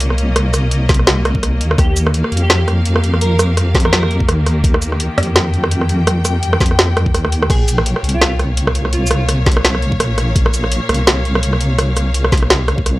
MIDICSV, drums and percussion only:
0, 0, Header, 1, 2, 480
1, 0, Start_track
1, 0, Tempo, 357143
1, 480, Time_signature, 4, 2, 24, 8
1, 17463, End_track
2, 0, Start_track
2, 0, Title_t, "Drums"
2, 5, Note_on_c, 9, 42, 81
2, 139, Note_off_c, 9, 42, 0
2, 139, Note_on_c, 9, 37, 51
2, 244, Note_on_c, 9, 42, 65
2, 273, Note_off_c, 9, 37, 0
2, 378, Note_off_c, 9, 42, 0
2, 482, Note_on_c, 9, 37, 78
2, 482, Note_on_c, 9, 42, 83
2, 617, Note_off_c, 9, 37, 0
2, 617, Note_off_c, 9, 42, 0
2, 721, Note_on_c, 9, 37, 51
2, 721, Note_on_c, 9, 42, 64
2, 721, Note_on_c, 9, 82, 63
2, 855, Note_off_c, 9, 37, 0
2, 855, Note_off_c, 9, 42, 0
2, 855, Note_off_c, 9, 82, 0
2, 960, Note_on_c, 9, 42, 78
2, 1094, Note_off_c, 9, 42, 0
2, 1199, Note_on_c, 9, 36, 116
2, 1199, Note_on_c, 9, 38, 64
2, 1199, Note_on_c, 9, 42, 50
2, 1199, Note_on_c, 9, 82, 35
2, 1268, Note_off_c, 9, 42, 0
2, 1268, Note_on_c, 9, 42, 64
2, 1333, Note_off_c, 9, 36, 0
2, 1334, Note_off_c, 9, 38, 0
2, 1334, Note_off_c, 9, 82, 0
2, 1335, Note_on_c, 9, 37, 50
2, 1402, Note_off_c, 9, 42, 0
2, 1440, Note_on_c, 9, 38, 123
2, 1440, Note_on_c, 9, 42, 81
2, 1469, Note_off_c, 9, 37, 0
2, 1575, Note_off_c, 9, 38, 0
2, 1575, Note_off_c, 9, 42, 0
2, 1682, Note_on_c, 9, 37, 77
2, 1682, Note_on_c, 9, 42, 37
2, 1813, Note_on_c, 9, 36, 64
2, 1817, Note_off_c, 9, 37, 0
2, 1817, Note_off_c, 9, 42, 0
2, 1922, Note_on_c, 9, 37, 49
2, 1922, Note_on_c, 9, 42, 79
2, 1947, Note_off_c, 9, 36, 0
2, 2056, Note_off_c, 9, 37, 0
2, 2056, Note_off_c, 9, 42, 0
2, 2161, Note_on_c, 9, 42, 66
2, 2296, Note_off_c, 9, 42, 0
2, 2298, Note_on_c, 9, 37, 74
2, 2397, Note_on_c, 9, 36, 120
2, 2403, Note_off_c, 9, 37, 0
2, 2403, Note_on_c, 9, 37, 54
2, 2403, Note_on_c, 9, 42, 81
2, 2531, Note_off_c, 9, 36, 0
2, 2538, Note_off_c, 9, 37, 0
2, 2538, Note_off_c, 9, 42, 0
2, 2640, Note_on_c, 9, 42, 63
2, 2640, Note_on_c, 9, 82, 67
2, 2774, Note_off_c, 9, 42, 0
2, 2774, Note_off_c, 9, 82, 0
2, 2776, Note_on_c, 9, 37, 73
2, 2878, Note_on_c, 9, 42, 79
2, 2910, Note_off_c, 9, 37, 0
2, 3013, Note_off_c, 9, 42, 0
2, 3014, Note_on_c, 9, 37, 51
2, 3118, Note_on_c, 9, 42, 46
2, 3149, Note_off_c, 9, 37, 0
2, 3186, Note_off_c, 9, 42, 0
2, 3186, Note_on_c, 9, 42, 64
2, 3321, Note_off_c, 9, 42, 0
2, 3358, Note_on_c, 9, 37, 79
2, 3358, Note_on_c, 9, 38, 122
2, 3358, Note_on_c, 9, 42, 76
2, 3493, Note_off_c, 9, 37, 0
2, 3493, Note_off_c, 9, 38, 0
2, 3493, Note_off_c, 9, 42, 0
2, 3599, Note_on_c, 9, 37, 51
2, 3599, Note_on_c, 9, 42, 36
2, 3733, Note_off_c, 9, 37, 0
2, 3733, Note_off_c, 9, 42, 0
2, 3837, Note_on_c, 9, 42, 77
2, 3971, Note_off_c, 9, 42, 0
2, 3973, Note_on_c, 9, 37, 75
2, 4081, Note_on_c, 9, 42, 62
2, 4108, Note_off_c, 9, 37, 0
2, 4215, Note_off_c, 9, 42, 0
2, 4215, Note_on_c, 9, 37, 50
2, 4319, Note_on_c, 9, 42, 82
2, 4349, Note_off_c, 9, 37, 0
2, 4453, Note_off_c, 9, 42, 0
2, 4559, Note_on_c, 9, 37, 77
2, 4559, Note_on_c, 9, 42, 62
2, 4559, Note_on_c, 9, 82, 67
2, 4694, Note_off_c, 9, 37, 0
2, 4694, Note_off_c, 9, 42, 0
2, 4694, Note_off_c, 9, 82, 0
2, 4801, Note_on_c, 9, 37, 52
2, 4801, Note_on_c, 9, 42, 78
2, 4935, Note_off_c, 9, 37, 0
2, 4935, Note_off_c, 9, 42, 0
2, 5035, Note_on_c, 9, 36, 106
2, 5041, Note_on_c, 9, 38, 62
2, 5041, Note_on_c, 9, 42, 47
2, 5107, Note_off_c, 9, 42, 0
2, 5107, Note_on_c, 9, 42, 62
2, 5169, Note_off_c, 9, 36, 0
2, 5175, Note_off_c, 9, 38, 0
2, 5175, Note_on_c, 9, 37, 82
2, 5241, Note_off_c, 9, 42, 0
2, 5278, Note_on_c, 9, 38, 116
2, 5278, Note_on_c, 9, 42, 73
2, 5310, Note_off_c, 9, 37, 0
2, 5413, Note_off_c, 9, 38, 0
2, 5413, Note_off_c, 9, 42, 0
2, 5416, Note_on_c, 9, 37, 57
2, 5520, Note_on_c, 9, 42, 36
2, 5550, Note_off_c, 9, 37, 0
2, 5651, Note_on_c, 9, 36, 60
2, 5654, Note_off_c, 9, 42, 0
2, 5760, Note_on_c, 9, 37, 79
2, 5760, Note_on_c, 9, 42, 74
2, 5785, Note_off_c, 9, 36, 0
2, 5894, Note_off_c, 9, 37, 0
2, 5894, Note_off_c, 9, 42, 0
2, 6000, Note_on_c, 9, 37, 52
2, 6000, Note_on_c, 9, 42, 65
2, 6135, Note_off_c, 9, 37, 0
2, 6135, Note_off_c, 9, 42, 0
2, 6235, Note_on_c, 9, 36, 115
2, 6240, Note_on_c, 9, 42, 81
2, 6370, Note_off_c, 9, 36, 0
2, 6374, Note_off_c, 9, 42, 0
2, 6374, Note_on_c, 9, 37, 87
2, 6477, Note_on_c, 9, 42, 63
2, 6477, Note_on_c, 9, 82, 69
2, 6509, Note_off_c, 9, 37, 0
2, 6612, Note_off_c, 9, 42, 0
2, 6612, Note_off_c, 9, 82, 0
2, 6616, Note_on_c, 9, 37, 54
2, 6719, Note_on_c, 9, 42, 80
2, 6750, Note_off_c, 9, 37, 0
2, 6853, Note_off_c, 9, 42, 0
2, 6959, Note_on_c, 9, 37, 79
2, 6959, Note_on_c, 9, 42, 48
2, 7026, Note_off_c, 9, 42, 0
2, 7026, Note_on_c, 9, 42, 62
2, 7093, Note_off_c, 9, 37, 0
2, 7160, Note_off_c, 9, 42, 0
2, 7200, Note_on_c, 9, 37, 53
2, 7200, Note_on_c, 9, 38, 115
2, 7200, Note_on_c, 9, 42, 78
2, 7334, Note_off_c, 9, 37, 0
2, 7334, Note_off_c, 9, 38, 0
2, 7334, Note_off_c, 9, 42, 0
2, 7441, Note_on_c, 9, 42, 36
2, 7575, Note_off_c, 9, 42, 0
2, 7575, Note_on_c, 9, 37, 80
2, 7680, Note_on_c, 9, 42, 79
2, 7709, Note_off_c, 9, 37, 0
2, 7814, Note_off_c, 9, 42, 0
2, 7814, Note_on_c, 9, 37, 56
2, 7920, Note_on_c, 9, 42, 65
2, 7948, Note_off_c, 9, 37, 0
2, 8054, Note_off_c, 9, 42, 0
2, 8160, Note_on_c, 9, 37, 88
2, 8160, Note_on_c, 9, 42, 86
2, 8294, Note_off_c, 9, 37, 0
2, 8294, Note_off_c, 9, 42, 0
2, 8398, Note_on_c, 9, 37, 53
2, 8398, Note_on_c, 9, 42, 67
2, 8398, Note_on_c, 9, 82, 68
2, 8533, Note_off_c, 9, 37, 0
2, 8533, Note_off_c, 9, 42, 0
2, 8533, Note_off_c, 9, 82, 0
2, 8639, Note_on_c, 9, 42, 80
2, 8773, Note_off_c, 9, 42, 0
2, 8775, Note_on_c, 9, 37, 86
2, 8877, Note_on_c, 9, 36, 101
2, 8883, Note_on_c, 9, 38, 57
2, 8883, Note_on_c, 9, 42, 50
2, 8883, Note_on_c, 9, 82, 38
2, 8910, Note_off_c, 9, 37, 0
2, 8949, Note_off_c, 9, 42, 0
2, 8949, Note_on_c, 9, 42, 65
2, 9011, Note_off_c, 9, 36, 0
2, 9017, Note_off_c, 9, 38, 0
2, 9017, Note_off_c, 9, 82, 0
2, 9018, Note_on_c, 9, 37, 56
2, 9083, Note_off_c, 9, 42, 0
2, 9123, Note_on_c, 9, 38, 121
2, 9123, Note_on_c, 9, 42, 82
2, 9152, Note_off_c, 9, 37, 0
2, 9257, Note_off_c, 9, 38, 0
2, 9257, Note_off_c, 9, 42, 0
2, 9364, Note_on_c, 9, 37, 86
2, 9364, Note_on_c, 9, 42, 37
2, 9492, Note_on_c, 9, 36, 61
2, 9498, Note_off_c, 9, 37, 0
2, 9498, Note_off_c, 9, 42, 0
2, 9602, Note_on_c, 9, 37, 62
2, 9602, Note_on_c, 9, 42, 80
2, 9627, Note_off_c, 9, 36, 0
2, 9737, Note_off_c, 9, 37, 0
2, 9737, Note_off_c, 9, 42, 0
2, 9738, Note_on_c, 9, 37, 64
2, 9842, Note_on_c, 9, 42, 64
2, 9872, Note_off_c, 9, 37, 0
2, 9976, Note_off_c, 9, 42, 0
2, 9979, Note_on_c, 9, 37, 79
2, 10078, Note_on_c, 9, 36, 120
2, 10085, Note_off_c, 9, 37, 0
2, 10085, Note_on_c, 9, 37, 56
2, 10085, Note_on_c, 9, 42, 84
2, 10085, Note_on_c, 9, 49, 77
2, 10212, Note_off_c, 9, 36, 0
2, 10219, Note_off_c, 9, 37, 0
2, 10219, Note_off_c, 9, 42, 0
2, 10219, Note_off_c, 9, 49, 0
2, 10322, Note_on_c, 9, 42, 67
2, 10322, Note_on_c, 9, 82, 65
2, 10456, Note_off_c, 9, 42, 0
2, 10456, Note_off_c, 9, 82, 0
2, 10459, Note_on_c, 9, 37, 85
2, 10565, Note_on_c, 9, 42, 83
2, 10593, Note_off_c, 9, 37, 0
2, 10699, Note_off_c, 9, 42, 0
2, 10700, Note_on_c, 9, 37, 59
2, 10806, Note_on_c, 9, 42, 52
2, 10835, Note_off_c, 9, 37, 0
2, 10871, Note_off_c, 9, 42, 0
2, 10871, Note_on_c, 9, 42, 68
2, 11006, Note_off_c, 9, 42, 0
2, 11041, Note_on_c, 9, 37, 88
2, 11041, Note_on_c, 9, 38, 126
2, 11041, Note_on_c, 9, 42, 88
2, 11175, Note_off_c, 9, 37, 0
2, 11175, Note_off_c, 9, 38, 0
2, 11175, Note_off_c, 9, 42, 0
2, 11282, Note_on_c, 9, 37, 57
2, 11282, Note_on_c, 9, 42, 39
2, 11416, Note_off_c, 9, 37, 0
2, 11416, Note_off_c, 9, 42, 0
2, 11521, Note_on_c, 9, 42, 82
2, 11655, Note_off_c, 9, 42, 0
2, 11657, Note_on_c, 9, 37, 80
2, 11761, Note_on_c, 9, 42, 67
2, 11791, Note_off_c, 9, 37, 0
2, 11894, Note_on_c, 9, 37, 54
2, 11895, Note_off_c, 9, 42, 0
2, 11998, Note_on_c, 9, 42, 85
2, 12028, Note_off_c, 9, 37, 0
2, 12133, Note_off_c, 9, 42, 0
2, 12184, Note_on_c, 9, 82, 66
2, 12239, Note_on_c, 9, 37, 80
2, 12239, Note_on_c, 9, 42, 68
2, 12318, Note_off_c, 9, 82, 0
2, 12374, Note_off_c, 9, 37, 0
2, 12374, Note_off_c, 9, 42, 0
2, 12480, Note_on_c, 9, 37, 54
2, 12480, Note_on_c, 9, 42, 86
2, 12614, Note_off_c, 9, 37, 0
2, 12614, Note_off_c, 9, 42, 0
2, 12719, Note_on_c, 9, 36, 113
2, 12721, Note_on_c, 9, 38, 64
2, 12721, Note_on_c, 9, 42, 55
2, 12789, Note_off_c, 9, 42, 0
2, 12789, Note_on_c, 9, 42, 68
2, 12853, Note_off_c, 9, 36, 0
2, 12855, Note_off_c, 9, 38, 0
2, 12857, Note_on_c, 9, 37, 86
2, 12923, Note_off_c, 9, 42, 0
2, 12964, Note_on_c, 9, 38, 127
2, 12964, Note_on_c, 9, 42, 87
2, 12992, Note_off_c, 9, 37, 0
2, 13098, Note_on_c, 9, 37, 56
2, 13099, Note_off_c, 9, 38, 0
2, 13099, Note_off_c, 9, 42, 0
2, 13203, Note_on_c, 9, 42, 37
2, 13232, Note_off_c, 9, 37, 0
2, 13334, Note_on_c, 9, 36, 66
2, 13337, Note_off_c, 9, 42, 0
2, 13441, Note_on_c, 9, 37, 83
2, 13441, Note_on_c, 9, 42, 88
2, 13468, Note_off_c, 9, 36, 0
2, 13575, Note_off_c, 9, 37, 0
2, 13575, Note_off_c, 9, 42, 0
2, 13679, Note_on_c, 9, 37, 54
2, 13679, Note_on_c, 9, 42, 68
2, 13814, Note_off_c, 9, 37, 0
2, 13814, Note_off_c, 9, 42, 0
2, 13919, Note_on_c, 9, 36, 127
2, 13921, Note_on_c, 9, 42, 89
2, 14054, Note_off_c, 9, 36, 0
2, 14056, Note_off_c, 9, 42, 0
2, 14056, Note_on_c, 9, 37, 83
2, 14161, Note_on_c, 9, 42, 67
2, 14161, Note_on_c, 9, 82, 64
2, 14190, Note_off_c, 9, 37, 0
2, 14295, Note_off_c, 9, 42, 0
2, 14295, Note_off_c, 9, 82, 0
2, 14296, Note_on_c, 9, 37, 55
2, 14402, Note_on_c, 9, 42, 82
2, 14430, Note_off_c, 9, 37, 0
2, 14537, Note_off_c, 9, 42, 0
2, 14639, Note_on_c, 9, 37, 79
2, 14639, Note_on_c, 9, 42, 53
2, 14709, Note_off_c, 9, 42, 0
2, 14709, Note_on_c, 9, 42, 64
2, 14774, Note_off_c, 9, 37, 0
2, 14844, Note_off_c, 9, 42, 0
2, 14881, Note_on_c, 9, 37, 52
2, 14881, Note_on_c, 9, 38, 125
2, 14881, Note_on_c, 9, 42, 82
2, 15016, Note_off_c, 9, 37, 0
2, 15016, Note_off_c, 9, 38, 0
2, 15016, Note_off_c, 9, 42, 0
2, 15123, Note_on_c, 9, 42, 37
2, 15257, Note_off_c, 9, 42, 0
2, 15259, Note_on_c, 9, 37, 79
2, 15361, Note_on_c, 9, 42, 81
2, 15393, Note_off_c, 9, 37, 0
2, 15495, Note_off_c, 9, 42, 0
2, 15496, Note_on_c, 9, 37, 55
2, 15598, Note_on_c, 9, 42, 66
2, 15630, Note_off_c, 9, 37, 0
2, 15732, Note_off_c, 9, 42, 0
2, 15839, Note_on_c, 9, 37, 81
2, 15839, Note_on_c, 9, 42, 79
2, 15974, Note_off_c, 9, 37, 0
2, 15974, Note_off_c, 9, 42, 0
2, 16082, Note_on_c, 9, 37, 49
2, 16082, Note_on_c, 9, 42, 65
2, 16082, Note_on_c, 9, 82, 61
2, 16217, Note_off_c, 9, 37, 0
2, 16217, Note_off_c, 9, 42, 0
2, 16217, Note_off_c, 9, 82, 0
2, 16322, Note_on_c, 9, 42, 82
2, 16456, Note_off_c, 9, 42, 0
2, 16457, Note_on_c, 9, 37, 78
2, 16561, Note_on_c, 9, 36, 110
2, 16565, Note_on_c, 9, 38, 62
2, 16565, Note_on_c, 9, 42, 49
2, 16565, Note_on_c, 9, 82, 36
2, 16591, Note_off_c, 9, 37, 0
2, 16632, Note_off_c, 9, 42, 0
2, 16632, Note_on_c, 9, 42, 63
2, 16696, Note_off_c, 9, 36, 0
2, 16699, Note_off_c, 9, 38, 0
2, 16699, Note_off_c, 9, 82, 0
2, 16700, Note_on_c, 9, 37, 53
2, 16766, Note_off_c, 9, 42, 0
2, 16804, Note_on_c, 9, 38, 125
2, 16804, Note_on_c, 9, 42, 80
2, 16834, Note_off_c, 9, 37, 0
2, 16938, Note_off_c, 9, 38, 0
2, 16938, Note_off_c, 9, 42, 0
2, 17044, Note_on_c, 9, 37, 75
2, 17044, Note_on_c, 9, 42, 36
2, 17177, Note_on_c, 9, 36, 65
2, 17178, Note_off_c, 9, 37, 0
2, 17178, Note_off_c, 9, 42, 0
2, 17285, Note_on_c, 9, 37, 50
2, 17285, Note_on_c, 9, 42, 80
2, 17311, Note_off_c, 9, 36, 0
2, 17419, Note_off_c, 9, 37, 0
2, 17419, Note_off_c, 9, 42, 0
2, 17463, End_track
0, 0, End_of_file